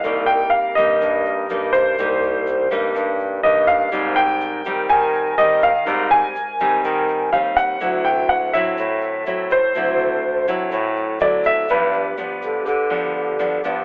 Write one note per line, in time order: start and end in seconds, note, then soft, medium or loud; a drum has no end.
0.00 0.46 C2 loud
0.00 0.98 C3 soft
0.00 0.73 G3 medium
0.00 3.65 A#4 medium
0.00 0.29 F5 medium
0.00 shaker medium
0.04 0.73 A#3 soft
0.04 0.73 D#4 medium
0.26 0.50 G5 medium
0.26 shaker soft
0.50 0.76 F5 medium
0.75 0.99 G2 medium
0.75 1.46 G3 medium
0.75 1.46 A#3 medium
0.75 1.46 D#4 medium
0.75 1.76 D#5 medium
0.75 shaker medium
1.01 1.46 G2 medium
1.01 1.96 G2 medium
1.01 shaker medium
1.26 shaker soft
1.50 1.95 G2 medium
1.50 1.94 G3 soft
1.50 1.95 A#3 soft
1.50 1.95 D#4 medium
1.50 shaker medium
1.73 2.66 C5 medium
1.73 shaker medium
1.98 2.67 C2 loud
1.98 2.93 C3 medium
1.98 2.68 G3 medium
1.98 2.68 A#3 soft
1.98 2.68 D#4 medium
1.98 shaker medium
2.23 shaker soft
2.47 shaker medium
2.71 2.93 G2 medium
2.71 3.40 G3 medium
2.71 3.40 A#3 medium
2.71 3.40 D#4 medium
2.71 shaker medium
2.95 3.90 G2 medium
2.95 3.40 G2 loud
2.95 shaker medium
3.20 shaker soft
3.43 3.88 G2 medium
3.43 3.89 G3 medium
3.43 3.89 A#3 medium
3.43 3.89 D#4 medium
3.43 3.69 D#5 medium
3.67 4.18 F5 loud
3.67 shaker medium
3.92 4.61 G#2 loud
3.92 4.87 G#2 medium
3.92 4.61 G3 medium
3.92 4.62 C4 medium
3.92 4.62 D#4 medium
3.92 7.53 A#4 medium
3.92 shaker medium
4.16 4.91 G5 medium
4.16 shaker soft
4.41 shaker medium
4.65 4.88 D#3 medium
4.65 5.35 G3 medium
4.65 5.35 C4 medium
4.65 5.35 D#4 medium
4.65 shaker medium
4.89 5.34 D#3 loud
4.89 5.84 D#3 medium
4.89 5.35 G#5 loud
4.89 shaker medium
5.13 shaker soft
5.38 5.83 D#3 medium
5.38 5.69 G3 medium
5.38 5.69 C4 medium
5.38 5.70 D#4 medium
5.38 5.61 D#5 medium
5.38 shaker medium
5.62 6.13 F5 loud
5.62 shaker medium
5.86 6.29 G#2 loud
5.86 6.81 G#2 soft
5.86 6.35 G3 soft
5.86 6.35 C4 medium
5.86 6.35 D#4 medium
5.86 shaker medium
6.11 7.36 G#5 loud
6.11 shaker soft
6.36 shaker medium
6.59 6.82 D#3 medium
6.59 7.29 G3 medium
6.59 7.29 C4 medium
6.59 7.29 D#4 medium
6.59 shaker medium
6.84 7.29 D#3 loud
6.84 7.79 D#3 medium
6.84 shaker medium
7.08 shaker soft
7.32 7.77 D#2 medium
7.32 7.77 G3 soft
7.32 7.77 C4 soft
7.32 7.78 D#4 medium
7.32 7.57 F5 medium
7.32 shaker soft
7.57 8.07 F#5 loud
7.57 shaker medium
7.80 8.50 D2 loud
7.80 8.75 D3 medium
7.80 8.50 F#3 medium
7.80 8.50 C4 medium
7.80 8.50 E4 medium
7.80 11.65 A4 medium
7.80 shaker medium
8.05 8.30 G5 medium
8.05 shaker soft
8.29 8.54 F#5 medium
8.53 8.76 A2 medium
8.53 9.23 F#3 medium
8.53 9.23 C4 medium
8.53 9.23 E4 medium
8.53 9.54 E5 medium
8.53 shaker medium
8.77 9.23 A2 loud
8.77 9.73 A2 soft
8.77 shaker medium
9.02 shaker soft
9.26 9.72 A2 medium
9.26 9.58 F#3 soft
9.26 9.58 C4 soft
9.26 9.58 E4 medium
9.26 shaker soft
9.50 10.45 C5 medium
9.50 shaker medium
9.75 10.44 D2 loud
9.75 10.70 D3 soft
9.75 10.24 F#3 medium
9.75 10.24 C4 soft
9.75 10.24 E4 medium
9.75 shaker medium
10.00 shaker soft
10.48 10.71 A2 medium
10.48 11.17 F#3 medium
10.48 11.17 C4 medium
10.48 11.17 E4 medium
10.48 shaker medium
10.71 11.67 A2 soft
10.71 11.17 A2 loud
10.71 shaker medium
10.96 shaker soft
11.20 11.66 D3 medium
11.20 11.65 F#3 medium
11.20 11.66 C4 medium
11.20 11.66 E4 medium
11.20 11.46 D5 medium
11.20 shaker medium
11.44 11.68 E5 medium
11.44 shaker medium
11.68 12.64 G2 soft
11.68 12.12 G2 loud
11.68 12.14 F3 soft
11.68 12.14 B3 soft
11.68 12.14 D4 medium
11.68 13.85 G4 medium
11.68 13.85 B4 medium
11.68 shaker medium
11.93 shaker soft
12.17 12.66 F3 soft
12.17 12.66 B3 soft
12.17 12.66 D4 medium
12.17 shaker medium
12.42 12.65 D3 medium
12.42 shaker medium
12.65 13.61 D3 medium
12.65 13.12 D3 loud
12.65 shaker medium
12.90 13.35 F3 medium
12.90 13.35 B3 medium
12.90 13.35 D4 medium
12.90 shaker soft
13.15 13.60 D3 medium
13.39 13.60 F3 medium
13.39 13.60 B3 medium
13.39 13.60 D4 medium
13.39 shaker medium
13.64 13.85 G2 medium
13.64 13.85 F3 medium
13.64 13.85 B3 soft
13.64 13.85 D4 medium
13.64 shaker medium